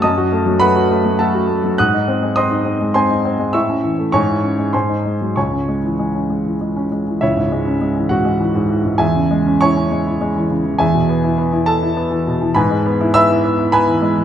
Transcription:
<<
  \new Staff \with { instrumentName = "Grand piano" } { \time 3/4 \key cis \minor \tempo 4 = 102 <dis'' a'' dis'''>4 <b' fis'' b''>4 <a' fis'' a''>4 | <fis'' dis''' fis'''>4 <dis'' bis'' dis'''>4 <bis' gis'' bis''>4 | <e'' cis''' e'''>4 <cis'' gis'' cis'''>4 <bis' gis'' bis''>4 | <cis'' gis'' cis'''>2~ <cis'' gis'' cis'''>8 r8 |
<e' cis'' e''>4. <fis' fis''>4. | <gis' e'' gis''>4 <cis'' gis'' cis'''>4. r8 | <gis' e'' gis''>4. <a' a''>4. | <b' gis'' b''>4 <e'' b'' e'''>4 <b' gis'' b''>4 | }
  \new Staff \with { instrumentName = "Grand piano" } { \clef bass \time 3/4 \key cis \minor fis,16 fis'16 a16 fis16 a16 fis'16 a16 fis16 a16 fis'16 a16 fis16 | gis,16 dis'16 bis16 gis16 bis16 dis'16 bis16 gis16 bis16 dis'16 bis16 gis16 | a,16 cis'16 e16 a16 gis,16 e'16 cis'16 gis16 gis,16 dis'16 gis16 fis16 | cis,16 cis'16 gis16 e16 gis16 cis'16 gis16 e16 gis16 cis'16 gis16 e16 |
cis,16 gis,16 gis16 cis'16 gis16 e16 gis,16 gis16 e16 gis,16 e16 gis,16 | e,16 cis16 gis16 cis'16 e'16 cis'16 gis16 e'16 gis16 e16 cis16 e16 | e,16 b,16 b16 e'16 b16 e'16 b16 e'16 b16 e16 b,16 e16 | gis,16 gis16 b16 e'16 b16 e'16 b16 e'16 b16 e16 gis16 e16 | }
>>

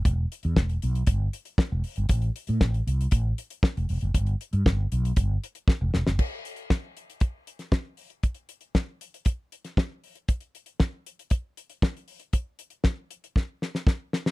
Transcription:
<<
  \new Staff \with { instrumentName = "Fretless electric bass" } { \clef bass \time 4/4 \key e \minor \tempo 4 = 117 e,,8 r16 e,16 e,,8 b,,8 g,,8 r8. e,,16 r16 g,,16 | a,,8 r16 a,16 a,,8 c,8 a,,8 r8. e,,16 e,,16 fis,,16 | g,,8 r16 g,16 g,,8 b,,8 g,,8 r8. e,,16 e,,16 fis,,16 | r1 |
r1 | r1 | r1 | }
  \new DrumStaff \with { instrumentName = "Drums" } \drummode { \time 4/4 <hh bd>8 hh16 hh16 <bd sn>16 hh16 hh16 hh16 <hh bd>8 hh16 hh16 <bd sn>8 hho16 hh16 | <hh bd>16 hh16 hh16 hh16 <bd sn>16 hh16 hh16 hh16 <hh bd>8 hh16 hh16 <bd sn>16 hh16 hho16 hh16 | <hh bd>16 hh16 hh16 hh16 <bd sn>8 hh16 hh16 <hh bd>8 hh16 hh16 <bd sn>8 sn16 sn16 | <cymc bd>8 hh16 hh16 <bd sn>8 hh16 hh16 <hh bd>8 hh16 <hh sn>16 <bd sn>8 hho16 hh16 |
<hh bd>16 hh16 hh16 hh16 <bd sn>8 hh16 hh16 <hh bd>8 hh16 <hh sn>16 <bd sn>8 hho16 hh16 | <hh bd>16 hh16 hh16 hh16 <bd sn>8 hh16 hh16 <hh bd>8 hh16 hh16 <bd sn>16 hh16 hho16 hh16 | <hh bd>8 hh16 hh16 <bd sn>8 hh16 hh16 <bd sn>8 sn16 sn16 <bd sn>8 sn16 sn16 | }
>>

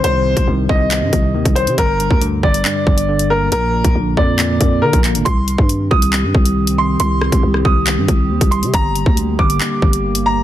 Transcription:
<<
  \new Staff \with { instrumentName = "Grand piano" } { \time 4/4 \key c \minor \tempo 4 = 138 c''4 r8 ees''2 c''8 | bes'4 r8 d''2 bes'8 | bes'4 r8 d''4. bes'8 r8 | c'''4 r8 ees'''2 c'''8 |
c'''4 r8 ees'''2 c'''8 | bes''4 r8 d'''2 bes''8 | }
  \new Staff \with { instrumentName = "Analog synth pad" } { \clef bass \time 4/4 \key c \minor << { r1 | r1 | r1 | <g g'>1~ |
<g g'>1~ | <g g'>1 | } \\ { r1 | r1 | r1 | <ees c'>1~ |
<ees c'>1 | <d bes>1 | } >> }
  \new Staff \with { instrumentName = "Tine electric piano" } { \clef bass \time 4/4 \key c \minor <c ees c'>8 c8 ees8 c8 c8 c8 ees8 c'8 | g,8 g,8 d8 g,8 g,8 g,8 d8 bes8 | bes,8 bes,8 d8 bes,8 bes,8 bes,8 d8 bes8 | r1 |
r1 | r1 | }
  \new Staff \with { instrumentName = "808-style bass" } { \clef bass \time 4/4 \key c \minor c,8. c,16 c,8 c,8. g,16 c,8 ees,16 c,8 c16 | g,,8. d,8. g,,8 r8 g,,4. | bes,,8. bes,,16 bes,,8 f,4 f,8 d16 bes,,8 aes,,16 | c,8. g,8. c,8. g,16 c,4. |
c,8. c,16 c,8 c,8. g,16 c,8 ees,16 c,8 c16 | g,,8. d,8. g,,8 r8 g,,4. | }
  \new DrumStaff \with { instrumentName = "Drums" } \drummode { \time 4/4 hh8. <hh bd>16 r8 bd8 <hc hh>8 <hh bd>8 r16 <hh bd>16 hh16 hh16 | <hh bd>8 hh16 bd16 hh8 bd16 hh16 hc8 bd16 hh16 r16 hh8. | hh8. <hh bd>16 r8 bd8 <hc hh>8 <hh bd>8 r16 <hh bd>16 <hc hh>16 hh16 | <hh bd>8 hh16 bd16 hh8 bd16 hh16 hc8 bd16 hh16 r16 hh8. |
hh8 ss16 <hh bd>16 r16 ss16 bd8 <hc hh>8 <hh bd>8 r16 <hh bd>16 hh16 hh16 | <hh bd>8 hh16 bd16 hh8 bd16 hh16 hc8 bd16 hh16 r16 hh8. | }
>>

